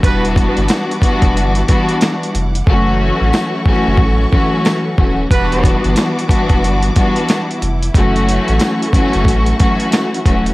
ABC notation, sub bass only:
X:1
M:4/4
L:1/16
Q:"Swing 16ths" 1/4=91
K:Edor
V:1 name="Sub bass" clef=bass
E,,,3 G,,, z3 E,,, G,,,2 z4 =F,,,2 | F,,,3 A,,, z3 F,,, A,,,2 z4 ^D,,,2 | E,,,3 G,,, z3 E,,, G,,,2 z4 =F,,,2 | F,,,3 A,,, z3 F,,, A,,,2 z4 ^D,,,2 |]